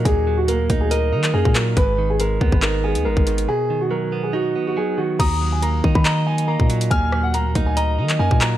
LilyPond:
<<
  \new Staff \with { instrumentName = "Synth bell" } { \time 4/4 \key ees \minor \tempo 4 = 140 r1 | r1 | r1 | ees'''4 r2. |
f'''4 r2. | }
  \new Staff \with { instrumentName = "Grand piano" } { \time 4/4 \key ees \minor aes'8. ges'16 bes'8. aes'16 bes'4 aes'8 bes'8 | ces''8. aes'16 bes'8. ces''16 bes'8 aes'8 bes'4 | aes'8. fis'16 bes'8. aes'16 fis'8. fis'16 aes'8 fis'8 | bes''8. aes''16 bes''8. ces'''16 bes''8 aes''8 bes''4 |
aes''8. ges''16 bes''8. aes''16 bes''4 aes''8 bes''8 | }
  \new Staff \with { instrumentName = "Clean electric guitar" } { \time 4/4 \key ees \minor <bes, ges bes ees' ees''>8 ges8 bes8 ees'8 ees''8 ees'8 bes8 ges8 | aes,8 ees8 aes8 ces'8 ees'8 ces'8 aes8 ees8 | b,8 dis8 fis8 b8 dis'8 b8 fis8 dis8 | ees8 ges8 bes8 ees'8 ees''8 ees'8 bes8 ges8 |
bes,8 ges8 bes8 ees'8 ees''8 ees'8 bes8 ges8 | }
  \new Staff \with { instrumentName = "808-style bass" } { \clef bass \time 4/4 \key ees \minor ees,4 d,16 ees,16 d,4 ees8 ges,16 bes,8. | aes,,4. ees,16 aes,,4 ees,16 aes,,16 aes,,8. | r1 | ees,4. ees16 ees4. bes,8. |
ees,4 d,16 ees,16 d,4 ees8 ges,16 bes,8. | }
  \new DrumStaff \with { instrumentName = "Drums" } \drummode { \time 4/4 <hh bd>4 hh8 <hh bd>8 hh8. <hc hh>16 r16 bd16 <hc hh>8 | <hh bd>4 hh8 bd16 bd16 <hc hh>8. hh16 r16 bd16 hh16 hh16 | r4 r4 r4 r4 | <cymc hh bd>4 hh8 bd16 bd16 <hc hh>8. hh16 r16 bd16 hh16 hh16 |
<hh bd>8 ss8 hh8 <hh bd>8 hh8. <hc hh>16 r16 bd16 <hc hh>8 | }
>>